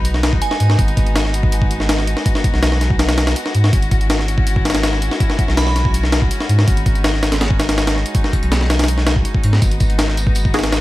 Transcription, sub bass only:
Already playing: B1
0.60 G#2
0.79 G#1
2.53 B1
3.55 G#2
3.73 G#1
5.48 B1
6.49 G#2
6.68 G#1
8.42 B1
9.44 G#2
9.62 G#1

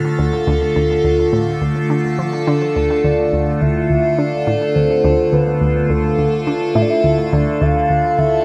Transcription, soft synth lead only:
3.04 D5
3.62 E5
4.18 D5
4.68 D5
4.75 C5
5.33 B4
5.90 A4
6.75 E5
6.82 D5
6.90 E5
7.33 D5
7.61 F5
8.19 E5

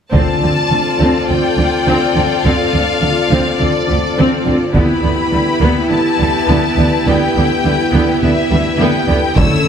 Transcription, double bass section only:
0.14 D2
0.43 D2
0.71 D2
1.00 D2
1.29 D2
1.58 D2
1.87 D2
2.16 D2
2.44 D2
2.74 D2
3.03 D2
3.31 D2
3.61 D2
3.90 D2
4.18 D2
4.46 D2
4.75 D2
5.03 D2
5.33 D2
5.62 D2
5.90 D2
6.20 D2
6.49 D2
6.77 D2
7.06 D2
7.36 D2
7.64 D2
7.93 D2
8.22 D2
8.51 D2
8.80 D2
9.10 D2
9.38 D2

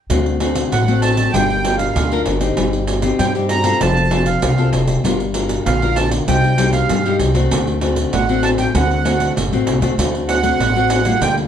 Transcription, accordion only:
0.72 F#5
1.02 A5
1.32 G5
1.78 F5
3.19 G5
3.49 A#5
3.81 A5
4.26 F5
5.66 F5
5.96 A5
6.28 G5
6.73 F5
8.13 F#5
8.43 A5
8.59 G5
8.75 F#5
10.28 F#5
11.21 G5

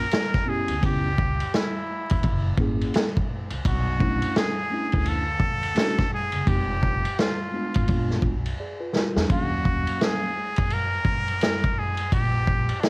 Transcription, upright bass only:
0.69 D2
0.83 C#2
2.12 E2
2.24 F#1
2.58 G#1
3.51 C2
3.65 B1
4.94 D2
6.33 F#1
6.47 F1
7.76 G#1
7.89 A#1
8.23 B1
9.16 E2
9.30 D#2
10.58 F#2
11.05 F#2
12.12 A#1

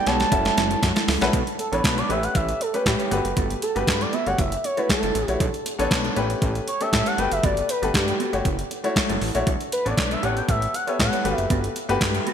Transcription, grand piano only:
0.06 B3 F#4 G4 A4 C#5
0.31 C#4 E4 F#4 A4 E5
1.21 C#4 E4 F#4 A4 B4
1.72 B3 D4 A4 C#5
2.09 A3 C#4 G4 B4
2.74 A3 C#4 G4 B4
3.11 A3 F#4 G4 B4
3.75 A3 F#4 G4 B4
4.26 A3 F#4 G4 C#5
4.77 A3 E4 F#4 C#5
5.28 A3 E4 F#4 C#5
5.78 B3 D4 A4 C#5
6.16 A3 C#4 G4 B4
6.80 A3 C#4 G4 A4
7.18 A3 F#4 G4 B4
7.82 A3 F#4 G4 B4
8.33 A3 F#4 G4 C#5
8.84 A3 E4 F#4 C#5
9.35 A3 E4 F#4 C#5
9.85 B3 D4 A4 C#5
10.23 B3 G4 A4 C#5
10.87 B3 G4 A4 C#5
11.24 A3 F#4 G4 B4
11.89 A3 F#4 G4 B4

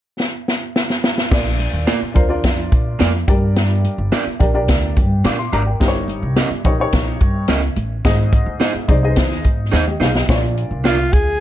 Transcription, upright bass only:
1.32 A#1
1.73 D#2
2.02 muted upright bass stroke
2.16 D2
2.44 F2
2.72 A#2
3.01 F2
3.28 G2
3.98 G1
4.27 muted upright bass stroke
4.40 A#1
4.69 D2
4.97 G2
5.25 A#2
5.53 G#1
5.81 G1
6.22 C2
6.51 muted upright bass stroke
6.65 A#1
6.93 A#1
7.21 G2
7.48 C#2
7.76 A1
8.05 G#1
8.46 D2
8.74 muted upright bass stroke
8.89 C2
9.17 D#2
9.45 G#2
9.73 D#2
10.00 B1
10.29 A#1
10.71 C2
11.13 D2

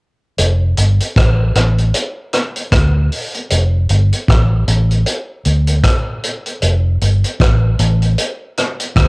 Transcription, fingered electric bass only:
0.39 F1
0.78 G1
1.17 A1
1.56 A1
2.73 D2
3.52 F1
3.90 G1
4.29 A1
4.68 A1
5.46 D2
6.63 F1
7.02 G1
7.40 A1
7.79 A1
8.97 D2

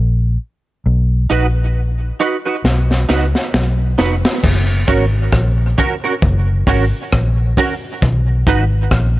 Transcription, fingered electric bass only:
Already playing: A#1
0.86 B1
1.31 A#1
2.64 B1
3.10 C#2
3.54 B1
3.99 F1
4.44 F#1
4.88 G#1
5.33 A#1
6.23 F#1
6.67 G#1
7.13 A#1
8.03 B1
8.47 G#1
8.92 A#1

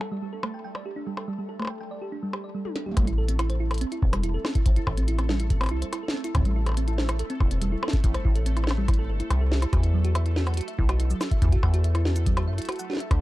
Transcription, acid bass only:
2.97 A1
4.02 E1
4.66 A1
4.87 A1
5.71 C2
6.35 A1
7.40 E1
8.04 A1
8.25 A1
9.09 G1
9.31 C2
9.73 E2
10.79 B1
11.42 E2
11.63 E2
12.47 F#2
13.11 D2

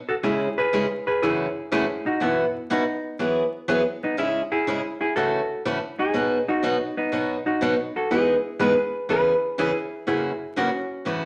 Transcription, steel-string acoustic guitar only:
0.23 C#3 G#3 C#4 E4 G#4
0.73 C#3 G#3 C#4 E4 G#4
1.23 F#2 C#3 E3 A3 C#4 F#4
1.72 F#2 C#3 E3 A3 C#4 F#4
2.20 F#2 B2 E3 B3 E4 F#4
2.70 F#2 B2 E3 B3 E4 F#4
3.19 E3 F#3 B3 E4 G#4
3.68 E3 F#3 B3 E4 G#4
4.17 C#3 G#3 C#4 E4 G#4
4.67 C#3 G#3 C#4 E4 G#4
5.16 C#3 E3 A3 C#4 F#4
5.65 C#3 E3 A3 C#4 F#4
6.14 B2 F#3 B3 D#4 F#4
6.63 B2 F#3 B3 D#4 F#4
7.12 B2 F#3 B3 D#4 F#4
7.61 B2 F#3 B3 D#4 F#4
8.11 E3 G#3 B3 D#4 G#4
8.59 E3 G#3 B3 D#4 G#4
9.09 C#3 E3 B3 C#4 G#4
9.58 C#3 E3 B3 C#4 G#4
10.07 F#2 C#3 E3 A#3 C#4 F#4
10.56 F#2 C#3 E3 A#3 C#4 F#4
11.05 F#2 C#3 E3 A3 C#4 F#4

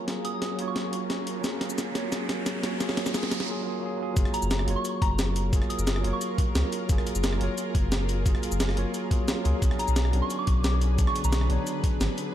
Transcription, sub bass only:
4.17 F#1
4.42 F#1
4.67 F#1
5.02 F#1
5.53 F#1
5.78 F#1
6.04 F#1
6.55 C#2
6.89 F#1
7.15 F#1
7.41 F#1
7.75 F#1
8.26 F#1
8.51 F#1
8.77 F#1
9.45 C#2
9.62 B1
9.88 B1
10.13 B1
10.47 B1
10.99 B1
11.24 B1
11.50 B1
12.00 G#1

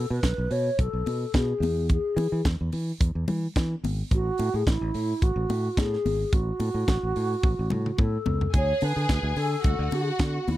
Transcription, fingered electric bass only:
0.10 B2
0.23 B1
0.38 B1
0.51 B2
0.79 B1
0.93 B1
1.06 B2
1.34 B2
1.60 E2
2.17 E3
2.32 E3
2.45 E2
2.61 E2
2.73 E3
3.00 E2
3.15 E2
3.28 E3
3.56 E3
3.84 G#1
4.11 A1
4.39 A2
4.54 A2
4.67 A1
4.81 A1
4.95 A2
5.22 A1
5.36 A1
5.49 A2
5.77 A2
6.05 G#1
6.33 A1
6.60 A2
6.74 A2
6.88 A1
7.03 A1
7.16 A2
7.43 A1
7.59 A1
7.73 A2
7.99 A2
8.27 C#2
8.54 D2
8.82 D3
8.96 D3
9.09 D2
9.23 D2
9.36 D3
9.64 D2
9.79 D2
9.92 D3
10.20 D3
10.48 D#2

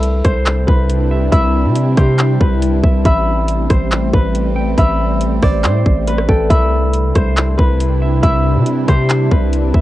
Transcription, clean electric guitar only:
Already playing: B5
0.24 C5
1.11 E5
1.32 B5
1.97 G4
2.84 E5
3.05 B5
3.70 C5
4.56 G5
4.78 B5
5.43 C5
6.29 G5
6.51 B5
7.15 C5
8.02 E5
8.23 B5
8.88 G4
9.74 E5

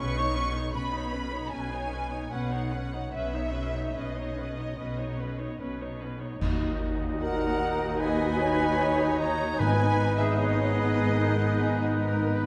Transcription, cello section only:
0.00 B2
0.75 B2
1.53 B2
2.32 B2
3.14 B2
3.96 B2
4.79 B2
5.60 B2
6.42 D#2
9.61 G#2

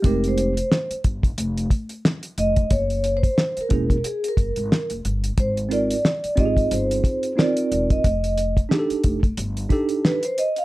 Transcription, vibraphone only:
0.05 A#4
0.28 C5
2.39 D#5
2.71 C#5
3.17 C5
3.61 A#4
4.05 G#4
4.28 A#4
5.40 C5
5.73 D5
6.39 D#5
6.72 C5
7.38 D5
7.91 D#5
10.05 B4
10.25 C5
10.39 D#5
10.58 F5

